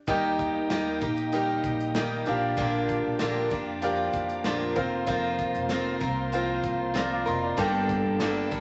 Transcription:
0.07 D#2 D#3 G3 A#3 D#4 G4 A#4 D#5 G5 D#6, kick, shaker
0.39 kick, shaker
0.56 D#2
0.70 D#3 G3 A#3 D#4 G4, snare, shaker
1.01 A#1 A#3 D#4 G4, kick, shaker
1.17 shaker
1.32 G3 A#3 D#4 G4 A#4 G5, shaker
1.64 A#1, kick, shaker
1.80 shaker
1.95 D#3 G3 A#3 D#4 G4, snare, shaker
2.26 A#1 F3 A#3 D4 G4 A#4 F5 D6, shaker
2.57 A#1 A#2 D3 F3 A#3 D4 G4, kick, shaker
2.89 kick, shaker
3.06 A#1
3.19 A#2 D3 F3 A#3 D4 G4, snare, shaker
3.50 F2 F3 A#3 D4 G4, kick, shaker
3.82 F3 A#3 D4 G4 A#4 F5, shaker
4.13 F2, kick, shaker
4.29 shaker
4.44 A#2 D3 F3 A#3 D4 G4, snare, shaker
4.75 F1 C4 F4 A#4 C5 F5 C6, kick, shaker
5.07 F3 C4 F4 A#4, kick, shaker
5.39 kick, shaker
5.54 F1, shaker
5.69 F3 C4 F4 A#4, snare, shaker
6.00 C2 C4 F4 A#4, kick, shaker
6.32 F3 C4 F4 A#4 F5, shaker
6.63 C2, kick, shaker
6.94 F3 C4 F4 A#4 D5 A#5, snare, shaker
7.13 F5 D6
7.26 F1 C4 F4 A#4 D#5 C6, shaker
7.43 D5 A#5
7.57 G1 G2 D3 G3 A#3 D4 G4 A4 A#4 D5 G5 A5, kick, shaker
7.89 kick, shaker
8.06 G1
8.20 G2 D3 G3 A#3 D4 A4, snare, shaker
8.51 D2 G3 A#3 D4 A4, kick, shaker

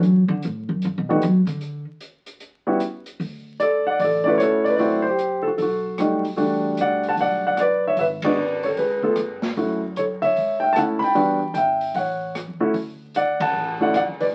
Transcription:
0.03 F#3, closed hi-hat
0.28 D3
0.42 A2, closed hi-hat
0.69 F#2
0.82 G2, closed hi-hat
0.98 B2
1.09 D#3 G3 A3 B3 D#4 F#4
1.22 F#3, closed hi-hat
1.47 D3, closed hi-hat
1.61 closed hi-hat
2.01 closed hi-hat
2.26 closed hi-hat
2.40 closed hi-hat
2.67 G3 B3 C#4 E4 F#4
2.80 closed hi-hat
3.06 closed hi-hat
3.20 D2, kick, open hi-hat
3.60 A4 D5, closed hi-hat
3.87 D5 F#5
3.99 A1 D5, kick, open hi-hat
4.04 A4
4.24 A3 C#4 E4 F#4 D5
4.29 B4
4.38 G1 C#5, cross-stick, closed hi-hat
4.42 A4
4.64 D5, open hi-hat
4.69 B4
4.76 F#1 A3 C4 E4 F#4 C5 D5, kick, open hi-hat
5.02 C5
5.08 G4
5.19 closed hi-hat
5.43 A4
5.47 F#4
5.58 B1 A4, kick, open hi-hat
5.62 F#4
5.98 G3 A3 D#4 F#4, cross-stick, closed hi-hat
6.25 open hi-hat
6.36 E2 G3 A3 D4 F#4, kick, open hi-hat
6.77 B2 D5 F#5, closed hi-hat
7.03 open hi-hat
7.08 F#5 A5
7.17 B1 F#5, kick, open hi-hat
7.21 D5
7.47 D5 F#5
7.57 D5, cross-stick, closed hi-hat
7.61 B4
7.87 C#5 E5
7.97 G#1 B4 E5, kick, open hi-hat
8.22 G#3 B3 D4 F#4 B4 D5, kick, ride
8.63 A4 C#5, open hi-hat
8.77 C#2 G#4 B4, kick, open hi-hat
9.03 A3 B3 F4 A4, kick
9.16 G2, cross-stick, closed hi-hat
9.42 snare, open hi-hat
9.57 F#2 A3 C#4 E4 F#4, kick, open hi-hat
9.96 A4 C#5, closed hi-hat
10.22 C#5 E5, open hi-hat
10.36 C#2, kick, open hi-hat
10.60 E5 G5
10.73 A3 C#4 A4 A5, cross-stick, closed hi-hat
10.77 E4 F#5
10.99 B5, open hi-hat
11.04 G5
11.15 E2 G3 B3 D4 F#4, kick, open hi-hat
11.54 G#1 G5, closed hi-hat
11.58 E5
11.81 open hi-hat
11.94 A1 F#5, kick, open hi-hat
11.99 C#5
12.35 cross-stick, closed hi-hat
12.48 E2
12.60 A2 A3 C#4 E4 F#4
12.74 D2, kick, open hi-hat
13.14 D5 F#5, closed hi-hat
13.40 C#2 F#5 A5, kick, ride
13.53 A1
13.80 A3 C#4 E4 F#4 D5 F#5
13.94 D5 F#5, cross-stick, closed hi-hat
14.07 D2
14.20 C#2 B4 D5, open hi-hat

